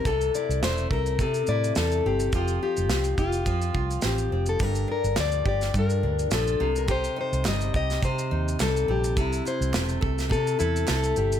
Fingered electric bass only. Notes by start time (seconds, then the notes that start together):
0.05 C2
0.49 C2
0.62 E1
0.91 C2
1.19 C3
1.48 A2
1.77 E2
2.06 G1
2.33 F1
2.78 F1
2.90 C2
3.18 F1
3.46 F2
3.75 C2
4.04 A1
4.31 F1
4.60 G1
5.04 G1
5.17 D2
5.46 G1
5.74 G2
6.03 D2
6.31 A#1
6.60 C2
7.33 C2
7.46 G1
7.74 C2
8.03 C3
8.32 D#2
8.60 C2
8.88 A#1
9.17 C2
9.61 C2
9.74 E1
10.03 C2
10.31 C3
10.60 E2
10.89 C2
11.17 G1